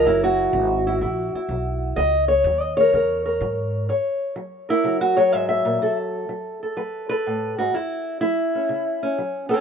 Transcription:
Already playing: A#4
0.05 F#1 F#2 F#3 E4
0.24 F#4
0.53 G#1 F#3
0.87 E4
1.01 A#1 C#3 E4
1.35 E4, muted upright bass stroke
1.49 B1 F#3
1.96 C#2 F#2 D#5
2.28 C#5
2.44 D#2 F#3
2.61 D#5
2.77 A#4 C#5
2.93 E2 C#3 A#4
3.26 A#4
3.41 G#2 F#3
3.89 F#2 C#5
4.36 F#3
4.69 E4 A#4
4.84 C#3 F#3
5.01 F#4
5.17 F#3 C#5
5.33 G#2 E5
5.49 E5
5.65 A#2
5.82 B2 A4
6.29 F#3
6.63 A4
6.77 F#3 B4
7.09 A4 B4
7.26 A2
7.58 G#2 F#4
7.74 F#2 E4
8.21 F#3 E4
8.55 C#4
8.69 C#3
9.03 C#4
9.18 F#3
9.49 C#4 A4

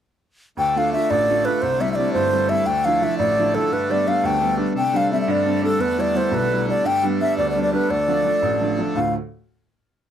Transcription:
0.57 D2 D3 A3 G5
0.76 A3 D4 F4 F5
0.92 A3 D4 F4 E5
1.10 A1 D5
1.30 A3 D4 F4
1.45 A3 D4 F4 B4
1.62 C2 C5
1.80 G3 C4 E4 E5
1.92 D5 E5
1.98 G3 C4 E4
2.13 G1 C5
2.32 G3 C4 E4
2.49 G3 C4 E4 E5
2.66 D2 G5
2.85 F3 D4 E4 F5
3.02 F3 D4 E4 E5
3.18 A1 D5
3.39 F3 D4 E4
3.55 F3 D4 E4 A4
3.72 G2 B4
3.90 G3 B3 D4 D5
4.06 G3 B3 D4 F5
4.23 D2 G5
4.40 G3 B3 D4
4.57 G3 B3 D4
4.74 C3 D3 A3 G5
4.93 G3 C4 D4 F5
5.11 G3 C4 D4 E5
5.21 E5
5.28 G2 D5
5.45 G3 C4 D4
5.62 G3 C4 D4 A4
5.79 E2 B4
5.98 G3 B3 E4 D5
6.15 G3 B3 E4 C5
6.32 B1 B4
6.52 G3 B3 E4
6.68 G3 B3 E4 D5
6.85 G2 G5
7.03 G3 B3 D4
7.21 G3 B3 D4 E5
7.37 D2 D5
7.50 D5
7.56 G3 B3 D4
7.63 D5
7.73 G3 B3 D4 B4
7.90 D2 D5
8.08 F3 A3 D4
8.25 F3 A3 D4
8.42 A1
8.61 F3 A3 D4
8.78 F3 A3 D4
8.95 D2 A2 D3 A3 F4 A4 F5

